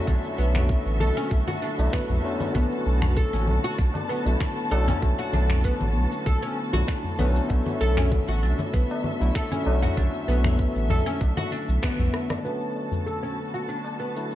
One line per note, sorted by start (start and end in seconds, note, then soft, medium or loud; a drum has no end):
0.00 0.05 D3 medium
0.00 0.07 F#3 medium
0.00 0.08 A3 medium
0.00 12.40 B3 medium
0.00 2.25 C#4 medium
0.00 1.79 E4 medium
0.00 12.41 F#4 medium
0.00 12.40 A4 medium
0.00 2.54 E5 medium
0.05 0.19 B1 loud
0.05 1.58 D3 medium
0.05 1.58 F#3 medium
0.05 1.59 A3 medium
0.05 0.23 D4 medium
0.05 1.60 C#5 medium
0.05 kick medium
0.05 low conga medium
0.05 shaker medium
0.25 shaker soft
0.38 0.77 B1 medium
0.38 0.99 B3 medium
0.55 finger snap medium
0.55 low conga medium
0.55 tabla ge medium
0.55 shaker medium
0.69 kick loud
0.69 shaker medium
0.86 1.02 A1 loud
0.86 shaker soft
1.00 1.11 B1 loud
1.00 1.16 A4 loud
1.00 tabla na soft
1.00 tabla tin soft
1.00 low conga medium
1.17 1.31 C#4 loud
1.17 shaker medium
1.31 1.42 B1 medium
1.31 kick loud
1.31 shaker medium
1.48 1.61 F#4 loud
1.48 low conga medium
1.48 shaker soft
1.62 1.78 D4 medium
1.77 1.88 B1 medium
1.77 2.20 D3 medium
1.77 2.20 F#3 medium
1.77 2.21 A3 medium
1.77 2.21 E4 medium
1.77 tabla na medium
1.77 shaker medium
1.93 2.54 B3 medium
1.93 finger snap medium
1.93 kick loud
1.93 low conga medium
1.93 shaker medium
2.10 2.19 B1 loud
2.10 tabla ge medium
2.10 shaker soft
2.23 2.49 D3 medium
2.23 2.49 F#3 medium
2.23 2.49 A3 medium
2.23 2.50 C#4 loud
2.40 tabla tin medium
2.40 low conga medium
2.40 shaker medium
2.53 2.66 B1 loud
2.53 4.05 D3 medium
2.53 4.06 F#3 medium
2.53 4.06 A3 medium
2.53 3.15 B3 medium
2.53 4.07 C#4 medium
2.53 7.49 A5 medium
2.53 kick loud
2.53 low conga medium
2.53 shaker medium
2.72 shaker soft
2.86 3.25 B1 medium
3.02 finger snap medium
3.02 low conga medium
3.02 tabla ge medium
3.02 shaker medium
3.17 3.32 A4 loud
3.17 kick loud
3.17 shaker medium
3.33 3.49 A1 loud
3.33 3.47 C#4 medium
3.33 shaker soft
3.48 3.59 B1 loud
3.48 low conga medium
3.64 3.77 F#4 loud
3.64 shaker medium
3.78 3.90 B1 medium
3.78 3.94 D4 medium
3.78 kick loud
3.78 shaker soft
3.94 tabla na medium
3.94 low conga medium
3.94 shaker soft
4.09 4.70 B3 medium
4.25 4.36 B1 medium
4.25 4.67 D3 medium
4.25 4.68 F#3 medium
4.25 4.68 A3 medium
4.25 4.69 E4 medium
4.25 tabla tin medium
4.25 shaker medium
4.40 finger snap medium
4.40 kick loud
4.40 low conga medium
4.40 shaker medium
4.58 shaker soft
4.71 4.93 B1 medium
4.71 4.96 D3 medium
4.71 4.97 F#3 medium
4.71 4.97 A3 medium
4.71 4.97 C#4 loud
4.71 4.87 A4 loud
4.71 tabla na medium
4.88 5.02 C#4 medium
4.88 tabla na soft
4.88 low conga medium
4.88 tabla ge loud
4.88 shaker medium
5.00 5.13 B1 loud
5.00 6.52 D3 medium
5.00 6.53 F#3 medium
5.00 6.54 A3 medium
5.00 6.54 C#5 medium
5.00 kick loud
5.00 shaker medium
5.19 5.32 F#4 loud
5.19 shaker soft
5.33 5.72 B1 medium
5.33 5.49 D4 medium
5.33 low conga medium
5.50 finger snap medium
5.50 tabla ge medium
5.50 shaker medium
5.64 6.25 B3 medium
5.64 kick loud
5.64 shaker medium
5.81 5.97 A1 loud
5.81 low conga medium
5.81 shaker soft
5.95 6.06 B1 medium
6.12 shaker medium
6.26 6.37 B1 medium
6.26 6.42 A4 loud
6.26 kick loud
6.26 low conga medium
6.26 shaker soft
6.42 6.56 C#4 loud
6.42 shaker soft
6.72 6.83 B1 medium
6.72 7.15 D3 medium
6.72 7.15 F#3 medium
6.72 7.16 A3 medium
6.72 7.16 E4 medium
6.72 6.87 F#4 loud
6.72 low conga medium
6.72 shaker medium
6.88 7.03 D4 medium
6.88 finger snap medium
6.88 kick loud
6.88 tabla tin soft
6.88 shaker medium
7.04 tabla ge medium
7.04 shaker soft
7.18 7.40 B1 medium
7.18 7.44 D3 medium
7.18 7.44 F#3 medium
7.18 7.44 A3 medium
7.18 7.79 B3 medium
7.18 7.45 C#4 loud
7.18 low conga medium
7.35 tabla tin medium
7.35 shaker medium
7.48 7.61 B1 loud
7.48 9.00 D3 medium
7.48 9.01 F#3 medium
7.48 9.01 A3 medium
7.48 9.02 C#5 medium
7.48 12.44 E5 medium
7.48 kick medium
7.48 shaker medium
7.66 low conga medium
7.66 shaker soft
7.81 8.20 B1 medium
7.81 7.96 A4 loud
7.97 8.11 C#4 loud
7.97 finger snap medium
7.97 tabla ge medium
7.97 shaker medium
8.12 kick loud
8.12 low conga medium
8.12 shaker medium
8.28 8.44 A1 loud
8.28 8.41 F#4 medium
8.28 shaker soft
8.43 8.54 B1 loud
8.43 8.58 D4 medium
8.59 low conga medium
8.59 shaker medium
8.74 8.85 B1 medium
8.74 9.34 B3 medium
8.74 kick loud
8.74 shaker soft
8.90 tabla na medium
8.90 shaker soft
9.04 low conga medium
9.20 9.31 B1 medium
9.20 9.62 D3 medium
9.20 9.63 F#3 medium
9.20 9.63 A3 medium
9.20 9.63 E4 medium
9.20 tabla tin medium
9.20 shaker medium
9.35 9.51 A4 loud
9.35 finger snap medium
9.35 kick loud
9.35 shaker soft
9.52 9.66 C#4 loud
9.52 low conga medium
9.52 shaker soft
9.65 9.88 B1 medium
9.65 9.91 D3 medium
9.65 9.91 F#3 medium
9.65 9.92 A3 medium
9.65 9.92 C#4 loud
9.65 tabla na medium
9.82 9.96 F#4 loud
9.82 tabla na soft
9.82 tabla ge medium
9.82 shaker medium
9.95 10.08 B1 loud
9.95 11.47 D3 medium
9.95 11.48 F#3 medium
9.95 11.49 A3 medium
9.95 10.13 D4 medium
9.95 kick loud
9.95 low conga medium
9.95 shaker medium
9.99 11.49 C#5 medium
10.14 shaker soft
10.28 10.67 B1 medium
10.28 10.89 B3 medium
10.44 finger snap medium
10.44 low conga medium
10.44 tabla ge medium
10.44 shaker medium
10.59 kick loud
10.59 shaker medium
10.76 10.92 A1 medium
10.76 shaker soft
10.90 11.01 B1 loud
10.90 11.06 A4 medium
10.90 tabla na soft
10.90 tabla tin soft
10.90 low conga medium
10.90 tabla ge medium
11.06 11.20 C#4 loud
11.06 shaker medium
11.21 11.32 B1 medium
11.21 kick loud
11.21 tabla na medium
11.21 shaker medium
11.37 11.50 F#4 loud
11.37 low conga medium
11.37 shaker soft
11.52 11.67 D4 medium
11.69 11.78 B1 medium
11.69 shaker medium
11.83 12.43 B3 medium
11.83 finger snap medium
11.83 kick loud
11.83 tabla tin soft
11.83 low conga medium
11.83 shaker medium
11.99 12.09 B1 loud
11.99 tabla ge medium
11.99 shaker soft
12.14 cross-stick medium
12.30 cross-stick medium
12.30 tabla na soft
12.30 tabla tin medium
12.30 low conga medium
12.30 shaker medium
12.43 13.95 D3 medium
12.43 13.96 F#3 medium
12.43 13.96 A3 medium
12.43 13.05 B3 medium
12.43 14.35 B3 medium
12.43 13.97 C#4 medium
12.43 14.35 F#4 medium
12.43 14.35 A4 medium
12.43 14.35 A5 medium
12.43 shaker soft
12.62 shaker soft
12.76 tabla tin soft
12.92 tabla ge medium
12.92 shaker medium
13.06 13.22 A4 medium
13.06 shaker soft
13.23 13.37 C#4 medium
13.23 shaker soft
13.54 13.67 F#4 medium
13.54 shaker medium
13.69 13.84 D4 medium
13.69 shaker soft
13.84 tabla na medium
13.84 shaker soft
14.00 14.35 B3 medium
14.15 14.35 D3 medium
14.15 14.35 F#3 medium
14.15 14.35 A3 medium
14.15 14.35 E4 medium
14.15 shaker medium
14.31 shaker soft